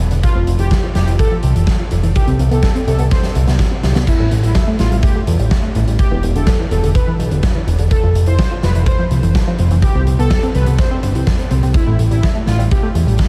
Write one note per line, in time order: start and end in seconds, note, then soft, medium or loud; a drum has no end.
0.11 0.22 E1 medium
0.11 0.18 D3 loud
0.11 closed hi-hat medium
0.23 0.48 F4 loud
0.23 kick loud
0.23 closed hi-hat medium
0.35 0.46 F1 medium
0.35 0.42 F3 loud
0.47 0.58 F1 medium
0.47 0.52 F3 medium
0.47 closed hi-hat medium
0.59 0.70 F1 medium
0.59 0.66 E3 loud
0.59 0.84 G4 medium
0.59 closed hi-hat medium
0.71 kick loud
0.71 snare loud
0.71 closed hi-hat medium
0.83 0.90 F3 loud
0.95 1.06 F1 medium
0.95 1.00 F3 medium
0.95 1.12 G4 medium
0.95 snare medium
0.95 closed hi-hat medium
1.07 1.18 F1 medium
1.07 1.15 E3 loud
1.07 closed hi-hat medium
1.19 1.36 A4 medium
1.19 kick loud
1.19 closed hi-hat medium
1.31 1.39 F3 loud
1.43 1.54 C2 medium
1.43 1.48 F3 medium
1.43 closed hi-hat medium
1.55 1.66 F1 medium
1.55 1.63 E3 medium
1.55 closed hi-hat medium
1.67 kick loud
1.67 snare loud
1.67 closed hi-hat medium
1.79 1.87 F3 loud
1.91 2.02 F1 medium
1.91 1.96 F3 medium
1.91 closed hi-hat medium
2.03 2.14 F1 medium
2.03 2.10 E3 loud
2.03 closed hi-hat medium
2.15 2.40 G4 loud
2.15 kick loud
2.15 closed hi-hat loud
2.27 2.38 C2 medium
2.27 2.34 C4 loud
2.27 closed hi-hat medium
2.39 2.50 C2 medium
2.39 2.43 C4 medium
2.39 closed hi-hat medium
2.51 2.62 C2 medium
2.51 2.58 B3 medium
2.51 2.76 A4 medium
2.51 closed hi-hat medium
2.62 kick loud
2.62 snare loud
2.62 closed hi-hat medium
2.75 2.82 C4 loud
2.75 closed hi-hat medium
2.87 2.98 C2 medium
2.87 2.92 C4 medium
2.87 3.04 A4 medium
2.87 closed hi-hat medium
2.98 3.10 C2 medium
2.98 3.06 B3 loud
2.98 closed hi-hat medium
3.11 3.28 C5 medium
3.11 kick loud
3.11 snare medium
3.11 closed hi-hat medium
3.23 3.31 C4 loud
3.23 snare soft
3.23 closed hi-hat medium
3.35 3.46 C2 medium
3.35 3.40 C4 medium
3.35 closed hi-hat medium
3.47 3.58 C2 medium
3.47 3.55 B3 loud
3.47 snare medium
3.47 closed hi-hat medium
3.59 kick loud
3.59 snare medium
3.59 closed hi-hat medium
3.71 3.79 C4 loud
3.83 3.94 C2 medium
3.83 3.88 C4 medium
3.83 snare medium
3.83 closed hi-hat medium
3.95 4.03 B3 loud
3.95 snare medium
3.95 closed hi-hat medium
4.07 4.32 E4 loud
4.07 kick loud
4.07 closed hi-hat medium
4.07 crash medium
4.19 4.30 A1 medium
4.19 4.26 A3 loud
4.31 4.42 A1 medium
4.31 4.36 A3 medium
4.31 closed hi-hat medium
4.43 4.54 A1 medium
4.43 4.50 G3 medium
4.43 4.68 E4 medium
4.43 closed hi-hat medium
4.55 kick loud
4.55 snare loud
4.55 closed hi-hat medium
4.67 4.75 A3 loud
4.79 4.90 A1 medium
4.79 4.84 A3 medium
4.79 4.96 F4 medium
4.79 snare medium
4.79 closed hi-hat medium
4.91 5.02 A1 medium
4.91 4.99 G3 loud
4.91 closed hi-hat medium
5.03 5.20 G4 medium
5.03 kick loud
5.03 closed hi-hat medium
5.15 5.23 A3 loud
5.27 5.38 E2 medium
5.27 5.32 A3 medium
5.27 closed hi-hat medium
5.39 5.50 A1 medium
5.39 5.47 G3 loud
5.39 closed hi-hat medium
5.51 kick loud
5.51 snare loud
5.51 closed hi-hat medium
5.63 5.70 A3 loud
5.75 5.86 A1 medium
5.75 5.80 A3 medium
5.75 closed hi-hat medium
5.87 5.98 A1 medium
5.87 5.95 G3 medium
5.87 closed hi-hat medium
5.99 6.24 G4 loud
5.99 kick loud
5.99 closed hi-hat medium
6.11 6.22 E1 medium
6.11 6.18 E3 loud
6.23 6.34 E1 loud
6.23 6.28 E3 medium
6.23 closed hi-hat medium
6.35 6.46 E1 medium
6.35 6.43 D3 loud
6.35 6.60 A4 loud
6.35 closed hi-hat medium
6.47 kick loud
6.47 snare loud
6.47 closed hi-hat medium
6.59 6.67 E3 loud
6.71 6.82 E1 loud
6.71 6.76 E3 medium
6.71 6.88 A4 medium
6.71 closed hi-hat medium
6.83 6.94 E1 medium
6.83 6.91 D3 loud
6.83 closed hi-hat medium
6.95 7.12 B4 medium
6.95 kick loud
6.95 closed hi-hat medium
7.07 7.15 E3 loud
7.19 7.30 B1 medium
7.19 7.24 E3 medium
7.19 closed hi-hat medium
7.31 7.42 E1 medium
7.31 7.39 D3 loud
7.31 closed hi-hat medium
7.43 kick loud
7.43 snare loud
7.43 closed hi-hat medium
7.55 7.63 E3 loud
7.67 7.78 E1 medium
7.67 7.72 E3 medium
7.67 closed hi-hat medium
7.78 7.90 E1 medium
7.78 7.87 D3 loud
7.78 closed hi-hat medium
7.91 8.16 A4 loud
7.91 kick loud
7.91 closed hi-hat medium
8.03 8.14 F1 medium
8.03 8.11 F3 loud
8.15 8.26 F1 medium
8.15 8.20 F3 medium
8.15 closed hi-hat medium
8.26 8.38 F1 medium
8.26 8.35 E3 loud
8.26 8.52 C5 medium
8.26 closed hi-hat medium
8.39 kick loud
8.39 snare loud
8.39 closed hi-hat medium
8.51 8.59 F3 loud
8.63 8.74 F1 medium
8.63 8.68 F3 medium
8.63 8.80 B4 medium
8.63 snare medium
8.63 closed hi-hat medium
8.75 8.86 F1 medium
8.75 8.83 E3 loud
8.75 closed hi-hat medium
8.86 9.04 C5 medium
8.86 kick loud
8.86 closed hi-hat medium
8.99 9.06 F3 loud
9.11 9.22 C2 medium
9.11 9.16 F3 medium
9.11 closed hi-hat medium
9.23 9.34 F1 medium
9.23 9.31 E3 medium
9.23 closed hi-hat medium
9.35 kick loud
9.35 snare loud
9.35 closed hi-hat medium
9.47 9.54 F3 loud
9.58 9.70 F1 medium
9.58 9.64 F3 medium
9.58 closed hi-hat medium
9.71 9.82 F1 medium
9.71 9.78 E3 loud
9.71 closed hi-hat medium
9.82 10.08 G4 loud
9.82 kick loud
9.82 closed hi-hat medium
9.95 10.06 C2 medium
9.95 10.02 C4 loud
10.07 10.18 C2 medium
10.07 10.12 C4 medium
10.07 closed hi-hat medium
10.19 10.30 C2 medium
10.19 10.26 B3 loud
10.19 10.44 A4 medium
10.19 closed hi-hat medium
10.30 kick loud
10.30 snare loud
10.30 closed hi-hat medium
10.43 10.50 C4 loud
10.43 closed hi-hat medium
10.54 10.66 C2 medium
10.54 10.60 C4 medium
10.54 10.72 B4 medium
10.54 closed hi-hat medium
10.66 10.78 C2 medium
10.66 10.74 B3 loud
10.66 closed hi-hat medium
10.79 10.96 C5 medium
10.79 kick loud
10.79 snare medium
10.79 closed hi-hat medium
10.91 10.98 C4 loud
11.03 11.14 G1 medium
11.03 11.07 C5 loud
11.03 closed hi-hat medium
11.15 11.26 C2 medium
11.15 11.26 E4 medium
11.15 closed hi-hat medium
11.27 kick loud
11.27 snare loud
11.27 closed hi-hat medium
11.39 11.50 C4 medium
11.39 closed hi-hat soft
11.50 11.62 C2 medium
11.50 11.62 C4 loud
11.50 closed hi-hat medium
11.63 11.74 C2 medium
11.63 11.67 C4 loud
11.63 closed hi-hat medium
11.74 12.00 E4 loud
11.74 kick loud
11.74 closed hi-hat medium
11.87 11.98 A1 medium
11.87 11.94 A3 loud
11.99 12.10 A1 medium
11.99 12.03 A3 medium
11.99 closed hi-hat medium
12.11 12.22 A1 medium
12.11 12.18 G3 loud
12.11 12.36 E4 loud
12.11 closed hi-hat medium
12.23 kick loud
12.23 snare loud
12.23 closed hi-hat medium
12.35 12.42 A3 loud
12.47 12.58 A1 medium
12.47 12.51 A3 medium
12.47 12.64 F4 medium
12.47 snare medium
12.47 closed hi-hat medium
12.59 12.70 A1 medium
12.59 12.66 G3 loud
12.59 closed hi-hat medium
12.71 12.88 G4 medium
12.71 kick loud
12.71 closed hi-hat medium
12.83 12.90 A3 loud
12.95 13.06 E2 loud
12.95 13.00 A3 medium
12.95 closed hi-hat medium
13.07 13.18 A1 medium
13.07 13.14 G3 loud
13.07 closed hi-hat medium
13.18 kick loud
13.18 snare loud
13.18 closed hi-hat medium